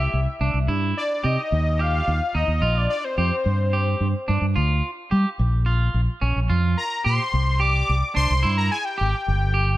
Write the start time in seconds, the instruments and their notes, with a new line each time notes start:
Already playing: clean electric guitar G4, analog synth lead E5
0.13 fretless electric bass C2
0.40 fretless electric bass C2, clean electric guitar D4
0.54 fretless electric bass C2
0.68 fretless electric bass G2, clean electric guitar E4
0.97 analog synth lead D5
1.24 fretless electric bass C3, clean electric guitar G4, analog synth lead D#5
1.52 fretless electric bass D#2
1.79 clean electric guitar G4, analog synth lead F5
2.07 fretless electric bass D#2
2.35 fretless electric bass D#2, clean electric guitar D#4, analog synth lead D#5
2.48 fretless electric bass D#2
2.61 fretless electric bass A#1, clean electric guitar F4
2.77 analog synth lead D5
2.90 analog synth lead D5
3.04 analog synth lead C5
3.18 fretless electric bass F2, clean electric guitar G4
3.46 fretless electric bass G2
3.73 clean electric guitar G4
4.00 fretless electric bass G2
4.28 fretless electric bass G2, clean electric guitar D4
4.41 fretless electric bass G2
4.56 fretless electric bass D2, clean electric guitar F4
5.11 fretless electric bass G3, clean electric guitar G4
5.39 fretless electric bass A#1
5.66 clean electric guitar F4
5.94 fretless electric bass A#1
6.21 fretless electric bass A#1, clean electric guitar C#4
6.36 fretless electric bass A#1
6.50 fretless electric bass F2, clean electric guitar F4
6.77 analog synth lead A#5
7.04 fretless electric bass A#2, clean electric guitar G4, analog synth lead C6
7.33 fretless electric bass C2
7.60 clean electric guitar G4, analog synth lead D6
7.89 fretless electric bass C2
8.15 fretless electric bass C2, clean electric guitar D4, analog synth lead C6
8.30 fretless electric bass C2
8.43 fretless electric bass G2, clean electric guitar E4
8.58 analog synth lead A#5
8.72 analog synth lead G#5
8.85 analog synth lead G5
8.98 fretless electric bass G#1, clean electric guitar G4
9.28 fretless electric bass G1
9.54 clean electric guitar G4